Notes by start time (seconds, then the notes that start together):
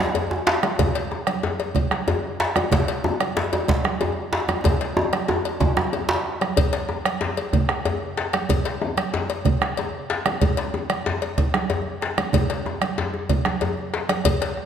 0.15 cowbell, djembe bass
0.31 djembe slap, djembe tone
0.47 djembe slap
0.63 bombo rim, cowbell, djembe slap, djembe tone, high conga
0.79 bombo low, cowbell, djembe tone, djembe bass, low conga
0.95 bombo rim, cowbell, djembe slap
1.11 bombo rim, djembe slap, djembe tone
1.27 bombo rim, cowbell, djembe slap, high conga
1.43 djembe slap, high conga, djembe bass
1.59 cowbell, high conga, djembe tone
1.75 bombo rim, bombo low, cowbell, djembe slap, low conga
1.91 bombo rim, djembe slap, high conga
2.08 cowbell, djembe tone, djembe bass
2.24 djembe slap
2.40 bombo rim, djembe slap
2.56 bombo rim, cowbell, djembe slap, high conga, djembe tone
2.72 bombo low, cowbell, djembe slap, low conga, djembe bass
2.88 cowbell, djembe slap
3.04 bombo rim, djembe slap, djembe tone
3.20 bombo rim, cowbell, djembe slap, high conga
3.37 djembe slap, high conga, djembe bass
3.53 cowbell, high conga, djembe tone
3.68 bombo rim, bombo low, cowbell, djembe slap, low conga
3.84 bombo rim, djembe slap, high conga
4.01 cowbell, djembe tone, djembe bass
4.17 djembe slap
4.33 bombo rim, djembe slap
4.49 bombo rim, cowbell, djembe slap, djembe tone, high conga
4.64 bombo low, cowbell, djembe tone, high conga, djembe bass, low conga
4.81 cowbell, djembe slap, high conga
4.97 djembe slap, djembe tone
5.13 bombo rim, cowbell, high conga
5.28 bombo rim, djembe slap, djembe tone, djembe bass
5.45 bombo rim, cowbell, djembe tone
5.60 bombo low, cowbell, djembe slap, djembe tone, low conga
5.76 bombo rim, djembe slap, high conga, djembe tone
5.93 cowbell, djembe slap, djembe tone
6.09 djembe slap, high conga
6.26 bombo rim
6.41 bombo rim, cowbell, djembe slap, djembe tone, high conga
6.57 bombo low, cowbell, djembe bass, low conga
6.73 bombo rim, cowbell, djembe slap
6.89 bombo rim, djembe slap, djembe tone
7.05 bombo rim, cowbell, djembe slap, high conga
7.21 djembe slap, high conga, djembe bass
7.37 cowbell, djembe tone, high conga
7.53 bombo rim, bombo low, cowbell, djembe slap, low conga
7.69 bombo rim, djembe slap
7.85 cowbell, djembe tone, djembe bass
8.02 djembe slap
8.17 bombo rim, djembe slap
8.33 bombo rim, cowbell, djembe tone, high conga
8.49 bombo low, cowbell, low conga, djembe bass
8.65 bombo rim, cowbell, djembe slap
8.82 bombo rim, djembe slap, djembe tone
8.97 bombo rim, cowbell, djembe slap, high conga
9.13 djembe slap, high conga, djembe bass
9.29 cowbell, high conga, djembe tone
9.45 bombo rim, bombo low, cowbell, djembe slap, low conga
9.61 bombo rim, djembe slap, high conga
9.77 cowbell, djembe tone
9.94 djembe slap
10.10 djembe slap
10.26 bombo rim, cowbell, djembe slap, high conga, djembe tone
10.41 bombo low, cowbell, low conga, djembe bass
10.57 bombo rim, cowbell, djembe slap
10.74 bombo rim, djembe slap, djembe tone
10.90 bombo rim, cowbell, djembe slap, high conga
11.06 djembe slap, high conga, djembe bass
11.21 cowbell, high conga, djembe tone
11.38 bombo rim, bombo low, cowbell, djembe slap, low conga
11.54 bombo rim, djembe slap, high conga
11.70 cowbell, djembe tone, djembe bass
11.86 djembe slap
12.02 bombo rim, djembe slap
12.18 bombo rim, cowbell, djembe slap, high conga, djembe tone
12.33 bombo low, cowbell, low conga, djembe bass
12.50 bombo rim, cowbell, djembe slap
12.66 bombo rim, high conga, djembe tone
12.81 bombo rim, cowbell, high conga
12.98 djembe slap, djembe bass
13.14 djembe tone, high conga
13.29 bombo low, cowbell, high conga, low conga
13.45 bombo rim, djembe slap, high conga
13.61 cowbell, djembe tone, djembe bass
13.77 high conga
13.94 bombo rim, djembe slap
14.09 bombo rim, cowbell, high conga, djembe tone
14.25 bombo low, cowbell, low conga, djembe bass
14.41 bombo rim, cowbell, djembe slap
14.57 bombo rim, djembe slap